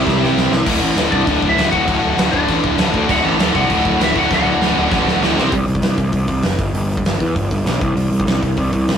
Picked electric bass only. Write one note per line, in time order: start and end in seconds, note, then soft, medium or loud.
0.06 0.25 C2 loud
0.38 0.47 C2 medium
0.52 0.61 C2 medium
0.67 0.77 D1 medium
0.82 0.92 A1 medium
0.96 1.06 D1 medium
1.12 1.22 C2 loud
1.27 1.37 D1 loud
1.43 1.52 D1 medium
1.57 1.67 D1 loud
1.73 1.83 D1 medium
1.88 1.97 D1 loud
2.03 2.12 D1 medium
2.17 2.27 D1 loud
2.34 2.43 D1 loud
2.49 2.58 A1 loud
2.64 2.73 D1 medium
2.78 2.88 D1 medium
2.94 3.04 D2 medium
3.09 3.19 D1 loud
3.24 3.34 A1 medium
3.39 3.49 D1 loud
3.55 3.65 C2 loud
3.70 3.80 D1 loud
3.85 3.95 D1 medium
4.01 4.10 D1 medium
4.16 4.25 D1 loud
4.31 4.40 D1 loud
4.45 4.55 D1 medium
4.61 4.71 D1 loud
4.77 4.86 D1 medium
4.92 5.01 A1 medium
5.06 5.16 D1 medium
5.21 5.38 D1 medium
5.37 5.46 C2 medium
5.52 5.65 C2 medium
5.66 5.80 C2 medium
5.82 5.96 C2 medium
5.98 6.11 C2 medium
6.13 6.26 C2 medium
6.28 6.42 C2 medium
6.43 6.57 F#1 medium
6.59 6.72 G1 medium
6.74 7.00 G1 medium
7.05 7.18 G1 medium
7.21 7.34 E2 medium
7.36 7.49 G1 medium
7.51 7.64 G1 medium
7.65 7.79 B1 medium
7.81 7.94 C2 medium
7.95 8.09 C2 medium
8.11 8.25 C2 medium
8.27 8.40 C2 medium
8.43 8.56 C2 medium
8.58 8.71 C2 medium
8.73 8.86 C2 medium
8.89 8.98 C2 medium